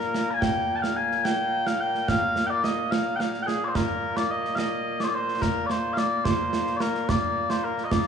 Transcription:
Already playing: A#2 A#3 A#4
0.01 snare
0.14 snare
0.31 G#5 A#5
0.41 G5, concert bass drum, snare
0.76 G5 A5
0.82 F5, snare
0.96 G#5
1.11 snare
1.24 G5, snare
1.67 F5, snare
1.80 G5
1.95 snare
2.08 F5, concert bass drum, snare
2.36 snare
2.46 D5 G5
2.64 D#5, snare
2.91 F5, snare
3.16 F5 G5
3.20 snare
3.34 snare
3.43 G5
3.47 G#4, snare
3.64 C5 D5
3.75 A#4, concert bass drum, snare
4.17 D5, snare
4.31 D#5
4.45 snare
4.55 D#5 F5, snare
5.00 C5 D5, snare
5.08 D5
5.15 C5
5.28 snare
5.42 A#4, concert bass drum, snare
5.66 D5, snare
5.71 C5
5.93 F5, snare
5.98 D5
6.24 C5, concert bass drum, snare
6.53 snare
6.67 snare
6.77 D5, snare
6.81 A#4
6.95 snare
7.09 D5, concert bass drum, snare
7.50 C5, snare
7.64 A#4
7.78 snare
7.84 D#5
7.91 D5, concert bass drum, snare

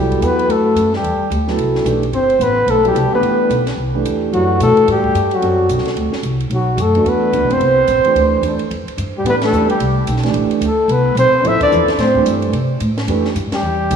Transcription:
Already playing: C2 F#3 G3 B3 E4 G4 A4
0.12 kick, ride
0.21 E2 B3 B4, hi-hat pedal, ride
0.39 ride
0.48 G2 A3 A4, ride
0.75 F#2, hi-hat pedal, ride
0.93 G3 G4, snare
1.03 E2, ride
1.19 muted upright bass stroke
1.30 D2, hi-hat pedal, ride
1.47 F#3 B3 E4 A4, snare
1.57 C2, ride
1.75 snare
1.84 B1 E3 A3 D4 G4, hi-hat pedal, ride
2.03 ride
2.12 G1 C4 C5, ride
2.30 ride
2.39 A1 B3 B4, hi-hat pedal, ride
2.66 B1 A3 A4, ride
2.84 F#3 G3 B3 E4 G4 A4, ride
2.95 C2, hi-hat pedal, ride
3.12 E3 A3 B3 D4 G4 B4
3.21 G1, ride
3.50 B1, hi-hat pedal, ride
3.67 snare, ride
3.77 C2
3.93 E3 A3 D4 G4
4.05 E2, hi-hat pedal, ride
4.31 F#2 E3 F#3 A3 D4 F#4, ride
4.60 B2 A3 A4, hi-hat pedal, ride
4.77 muted upright bass stroke, ride
4.88 A2 G3 G4, ride
5.04 kick
5.14 G2, hi-hat pedal, ride
5.31 F#3 F#4, ride
5.41 F#2 G3 C4 F#4 A4, ride
5.69 B1, hi-hat pedal, ride
5.78 snare
5.85 muted upright bass stroke, snare, ride
5.96 D2, ride
6.13 muted upright bass stroke, snare
6.23 C2, hi-hat pedal, ride
6.40 ride
6.49 B1 F#3, ride
6.55 F#4
6.77 F#2 A3, hi-hat pedal, ride
6.82 A4
6.95 E3 A3 D4 F#4, ride
7.04 E2 B3, ride
7.09 B4
7.33 D2 E3 A3 D4 F#4, hi-hat pedal, ride
7.43 B1
7.50 F#1 C4 C5, ride
7.60 C2, ride
7.88 A#1, hi-hat pedal, ride
8.04 E3 A3 D4 G4, muted upright bass stroke, ride
8.15 D2, ride
8.41 E2 E3 A3 D4 A4, hi-hat pedal, ride
8.59 muted upright bass stroke, ride
8.71 F2, ride
8.88 muted upright bass stroke, ride
8.97 G2, hi-hat pedal, ride
9.18 G3 G4
9.23 A2 E3 A3 B3 D4 G4, ride
9.30 B4
9.42 A3 A4, snare, ride
9.52 E2 E3 A3 D4 G4, hi-hat pedal
9.68 G3 G4, ride
9.80 C2, ride
10.07 B1, hi-hat pedal, ride
10.16 snare
10.23 E3 A3 D4 G4, snare, ride
10.34 A1, ride
10.51 muted upright bass stroke, ride
10.61 D2 A3, hi-hat pedal, ride
10.67 A4
10.88 C2 B3 B4, ride
11.15 B1 C4 C5, hi-hat pedal, ride
11.33 muted upright bass stroke
11.43 A1 F3 B3 E4 A4, ride
11.47 E5
11.60 D4 D5, muted upright bass stroke, kick, ride
11.70 E2 F3 B3 E4 A4, hi-hat pedal
11.88 muted upright bass stroke, snare, ride
11.98 A2 C4 C5, snare, ride
12.15 E3 A3 D4 G4, kick
12.26 G2, hi-hat pedal, ride
12.42 ride
12.52 C3, ride
12.80 A2, hi-hat pedal, ride
12.98 snare, ride
13.07 F2 E3 A3 D4 G4, ride
13.25 snare
13.35 G2, hi-hat pedal, ride
13.51 G3, muted upright bass stroke, snare, ride
13.55 G4
13.63 E2
13.90 C2 F3 A#3 D#4 G#4, hi-hat pedal, ride

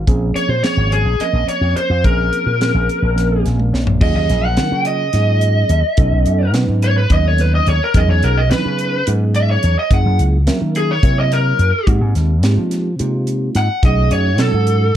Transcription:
0.07 A#1 F3 A#3 C4 C#4 G#4, kick, closed hi-hat
0.35 C#5, muted slap bass stroke, closed hi-hat
0.49 A#2 C5
0.63 F3 A#3 C4 C#4 G#4 C#5, snare, closed hi-hat
0.77 G#1
0.92 G#4, closed hi-hat
1.05 A#1
1.20 F3 A#3 C4 C#4 A#4 D#5, closed hi-hat
1.33 A#1
1.48 C#5, closed hi-hat
1.61 F2
1.76 C5, muted slap bass stroke, closed hi-hat
1.90 F2
2.04 A#1 F3 A#3 C4 C#4 G#4 A#4, kick, closed hi-hat
2.33 closed hi-hat
2.46 A#2
2.60 F3 A#3 C4 C#4 G#4, snare, closed hi-hat
2.74 A#1
2.89 closed hi-hat
3.02 A#1
3.15 F3 A#3 C4 C#4 A#4, snare, closed hi-hat
3.45 A#1 G#5, snare, closed hi-hat
3.59 F5, high tom
3.73 A#1 C#5, snare
3.87 floor tom
4.00 D#2 F#3 A#3 C#4 F4 G#4 D#5, kick, crash
4.15 D#2 D#5
4.29 A#1, snare, closed hi-hat
4.45 F#5
4.57 D#3 F#3 A#3 C#4 F4 A#4, snare, closed hi-hat
4.72 C#3
4.85 D#5, closed hi-hat
5.13 G#2 F#3 A#3 C#4 F4 G#4, snare, closed hi-hat
5.41 closed hi-hat
5.69 D#2, closed hi-hat
5.97 B1 F#3 B3 C#4 D#4 A4, kick, closed hi-hat
6.12 B1
6.26 F#2, closed hi-hat
6.53 B2 F#3 B3 C#4 D#4 B4, snare, closed hi-hat
6.68 G#2
6.82 C#5, closed hi-hat
6.98 B4
7.10 D#2 F#3 B3 C#4 D#4 A4 D#5, kick, closed hi-hat
7.28 C#5
7.38 B4, snare, closed hi-hat
7.55 D#5
7.67 D#2 C#5, closed hi-hat
7.84 A#4
7.94 E2 F#3 B3 C#4 D#4 G#4 D#5, kick, closed hi-hat
8.08 E2 C#5
8.23 B1 A#4, closed hi-hat
8.37 D#5
8.50 E3 F#3 B3 C#4 D#4 B4, snare, closed hi-hat
8.65 C#3
8.79 closed hi-hat
9.07 G#2 F#3 B3 C#4 D#4 G#4, closed hi-hat
9.35 E5, closed hi-hat
9.51 C#5
9.63 E2, closed hi-hat
9.79 D#5
9.91 F#2 F#3 A#3 C#4 E4 G#4 F#5, kick, closed hi-hat
10.06 F#2
10.19 C#2, closed hi-hat
10.47 F#3 A#3 C#4 A#4 E5, snare, closed hi-hat
10.61 D#3
10.75 G#4, closed hi-hat
10.91 C#5
11.03 C3 F#3 A#3 E4 A#4 C#5, kick, closed hi-hat
11.20 D#5
11.32 A#4, snare, closed hi-hat
11.59 F#2, closed hi-hat
11.87 G#2 G#3 A#3 C4 D#4 G4, kick, closed hi-hat
12.01 G#2
12.15 D#2, snare, closed hi-hat
12.43 G#2 G#3 A#3 C4 D#4 G4, snare, closed hi-hat
12.57 F3
12.71 snare, closed hi-hat
12.99 C3 G#3 A#3 C4 D#4 F4, closed hi-hat
13.27 closed hi-hat
13.55 G#2 F#5, snare, closed hi-hat
13.83 B1 F#3 A3 C#4 D#4 G#4 D#5, kick, closed hi-hat
13.97 B1
14.11 F#2 C#5, closed hi-hat
14.38 B2 F#3 C#4 D#4 F#4 A4, snare, closed hi-hat
14.53 G#2
14.67 closed hi-hat

